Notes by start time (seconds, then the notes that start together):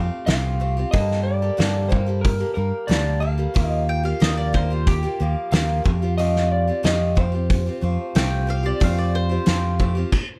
Already playing: A3 C4 F4 G4
0.26 C2 F3 A3 C4 F4 G4 F5, snare, open hi-hat
0.60 A3 C4 F4 G4
0.77 C4 F4 G4
0.91 G2 D3 G3 A#3 G4 A4 D#5, kick, open hi-hat
1.11 snare
1.23 D5
1.42 G3 A#3 G4 A4
1.57 G2 D3 G3 A#3 G4 A4, snare, open hi-hat
1.89 G3 A#3 G4 A4 C5, kick
2.06 G3 A#3 G4 A4
2.21 A#4, kick, open hi-hat
2.39 G3 A#3 G4 A4
2.54 G2 G3 A#3 G4 A#4
2.87 D2 G2 D3 G3 A#3 G4 A4 D5, snare, open hi-hat
3.20 G3 A#3 G4 A4 F5
3.38 G3 A#3 G4 A4
3.54 D#2 D#3 F3 A#3 F4 G4, kick, open hi-hat
3.68 D#5
3.89 G5
4.03 A#3 F4 G4 F5
4.20 D#2 D#3 F3 A#3 F4 G4 D#5, snare, open hi-hat
4.37 D5
4.53 F3 A#3 F4 G4 C5, kick
4.70 A#3 F4 G4
4.87 G4, kick, open hi-hat
5.03 A#3 F4 G4
5.20 D#2 F3 A#3 F4 G4
5.51 D#2 D#3 F3 A#3 F4 G4 F5, snare, open hi-hat
5.84 F2 A3 C4 F4 G4, kick
6.02 C4 F4 G4
6.18 F3 A3 C4 F4 G4 D#5, open hi-hat
6.36 snare
6.52 D5
6.68 C4 F4 G4
6.83 F2 F3 A3 C4 F4 G4 D#5, snare, open hi-hat
7.15 A3 C4 F4 G4 C5, kick
7.32 C4 F4 G4
7.50 kick, open hi-hat
7.66 C4 F4 G4
7.81 F2 A3 C4 F4 G4
8.15 C2 F3 A3 C4 F4 G4 G5, snare, open hi-hat
8.47 A3 C4 F4 G4 F5
8.63 C4 F4 G4 D5
8.80 F2 F3 A3 C4 F4 G4 F5, kick, open hi-hat
8.98 D5
9.15 C5
9.29 C4 F4 G4
9.46 F2 F3 A3 C4 F4 G4, snare, open hi-hat
9.79 A3 C4 F4 G4, kick
9.95 C4 F4 G4
10.12 kick, crash